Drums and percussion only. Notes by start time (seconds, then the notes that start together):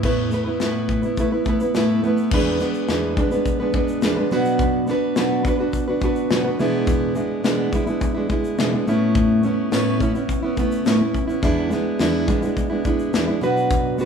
0.03 kick, crash
0.31 snare, shaker
0.60 snare, shaker
0.89 kick, shaker
1.03 shaker
1.17 kick, shaker
1.45 kick, shaker
1.60 shaker
1.75 snare, shaker
2.03 shaker
2.17 shaker
2.31 kick, crash
2.60 snare, shaker
2.74 shaker
2.89 snare, shaker
3.17 kick, shaker
3.31 shaker
3.46 kick, shaker
3.73 kick, shaker
3.88 shaker
4.02 snare, shaker
4.31 shaker
4.45 shaker
4.59 kick, shaker
4.87 snare, shaker
5.16 snare, shaker
5.45 kick, shaker
5.73 kick, shaker
6.01 kick, shaker
6.16 shaker
6.30 snare, shaker
6.59 shaker
6.87 kick, shaker
7.15 shaker
7.44 snare, shaker
7.73 kick, shaker
7.87 shaker
8.01 kick, shaker
8.29 kick, shaker
8.44 shaker
8.58 snare, shaker
8.88 shaker
9.15 kick, shaker
9.43 shaker
9.72 snare, shaker
10.00 kick, shaker
10.15 shaker
10.29 kick, shaker
10.57 kick, shaker
10.72 shaker
10.86 snare, shaker
11.14 kick, shaker
11.29 shaker
11.43 kick, shaker
11.71 snare, shaker
11.99 snare, shaker
12.28 kick, shaker
12.42 shaker
12.57 kick, shaker
12.85 kick, shaker
12.99 shaker
13.14 snare, shaker
13.42 shaker
13.57 shaker
13.70 kick, shaker
13.98 shaker